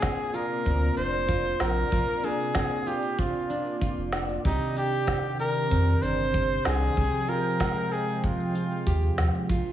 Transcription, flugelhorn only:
0, 0, Header, 1, 2, 480
1, 0, Start_track
1, 0, Tempo, 631579
1, 1461, Time_signature, 4, 2, 24, 8
1, 7391, End_track
2, 0, Start_track
2, 0, Title_t, "Flugelhorn"
2, 0, Program_c, 0, 56
2, 0, Note_on_c, 0, 68, 88
2, 262, Note_on_c, 0, 70, 99
2, 274, Note_off_c, 0, 68, 0
2, 734, Note_off_c, 0, 70, 0
2, 738, Note_on_c, 0, 72, 107
2, 1222, Note_on_c, 0, 70, 113
2, 1233, Note_off_c, 0, 72, 0
2, 1707, Note_on_c, 0, 68, 99
2, 1719, Note_off_c, 0, 70, 0
2, 2185, Note_on_c, 0, 67, 94
2, 2196, Note_off_c, 0, 68, 0
2, 2425, Note_on_c, 0, 65, 77
2, 2436, Note_off_c, 0, 67, 0
2, 3143, Note_off_c, 0, 65, 0
2, 3387, Note_on_c, 0, 63, 95
2, 3607, Note_off_c, 0, 63, 0
2, 3634, Note_on_c, 0, 67, 102
2, 4077, Note_off_c, 0, 67, 0
2, 4106, Note_on_c, 0, 70, 110
2, 4578, Note_on_c, 0, 72, 108
2, 4589, Note_off_c, 0, 70, 0
2, 5061, Note_on_c, 0, 68, 101
2, 5072, Note_off_c, 0, 72, 0
2, 5541, Note_on_c, 0, 70, 106
2, 5552, Note_off_c, 0, 68, 0
2, 6019, Note_on_c, 0, 68, 90
2, 6031, Note_off_c, 0, 70, 0
2, 6260, Note_off_c, 0, 68, 0
2, 6267, Note_on_c, 0, 65, 79
2, 6953, Note_off_c, 0, 65, 0
2, 7391, End_track
0, 0, End_of_file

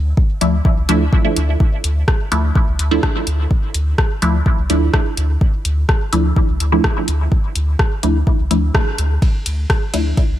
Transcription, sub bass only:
0, 0, Header, 1, 2, 480
1, 0, Start_track
1, 0, Key_signature, -1, "minor"
1, 0, Tempo, 476190
1, 1615, Time_signature, 4, 2, 24, 8
1, 10477, End_track
2, 0, Start_track
2, 0, Title_t, "Sub bass"
2, 0, Program_c, 0, 38
2, 0, Note_on_c, 0, 38, 98
2, 135, Note_off_c, 0, 38, 0
2, 415, Note_on_c, 0, 38, 99
2, 615, Note_off_c, 0, 38, 0
2, 776, Note_on_c, 0, 36, 88
2, 875, Note_off_c, 0, 36, 0
2, 895, Note_on_c, 0, 38, 95
2, 1095, Note_off_c, 0, 38, 0
2, 1375, Note_on_c, 0, 38, 98
2, 1575, Note_off_c, 0, 38, 0
2, 1855, Note_on_c, 0, 38, 95
2, 2055, Note_off_c, 0, 38, 0
2, 2334, Note_on_c, 0, 38, 97
2, 2535, Note_off_c, 0, 38, 0
2, 2695, Note_on_c, 0, 36, 88
2, 2795, Note_off_c, 0, 36, 0
2, 2815, Note_on_c, 0, 38, 93
2, 3015, Note_off_c, 0, 38, 0
2, 3294, Note_on_c, 0, 38, 101
2, 3495, Note_off_c, 0, 38, 0
2, 3774, Note_on_c, 0, 38, 100
2, 3975, Note_off_c, 0, 38, 0
2, 4255, Note_on_c, 0, 38, 99
2, 4455, Note_off_c, 0, 38, 0
2, 4616, Note_on_c, 0, 36, 89
2, 4715, Note_off_c, 0, 36, 0
2, 4734, Note_on_c, 0, 38, 95
2, 4935, Note_off_c, 0, 38, 0
2, 5214, Note_on_c, 0, 38, 101
2, 5415, Note_off_c, 0, 38, 0
2, 5695, Note_on_c, 0, 38, 100
2, 5895, Note_off_c, 0, 38, 0
2, 6175, Note_on_c, 0, 38, 100
2, 6375, Note_off_c, 0, 38, 0
2, 6536, Note_on_c, 0, 36, 90
2, 6635, Note_off_c, 0, 36, 0
2, 6655, Note_on_c, 0, 38, 96
2, 6856, Note_off_c, 0, 38, 0
2, 7135, Note_on_c, 0, 38, 98
2, 7336, Note_off_c, 0, 38, 0
2, 7616, Note_on_c, 0, 38, 95
2, 7816, Note_off_c, 0, 38, 0
2, 8095, Note_on_c, 0, 38, 101
2, 8295, Note_off_c, 0, 38, 0
2, 8455, Note_on_c, 0, 36, 88
2, 8555, Note_off_c, 0, 36, 0
2, 8574, Note_on_c, 0, 38, 87
2, 8775, Note_off_c, 0, 38, 0
2, 9055, Note_on_c, 0, 38, 107
2, 9255, Note_off_c, 0, 38, 0
2, 9535, Note_on_c, 0, 38, 99
2, 9735, Note_off_c, 0, 38, 0
2, 10015, Note_on_c, 0, 38, 95
2, 10215, Note_off_c, 0, 38, 0
2, 10376, Note_on_c, 0, 36, 90
2, 10475, Note_off_c, 0, 36, 0
2, 10477, End_track
0, 0, End_of_file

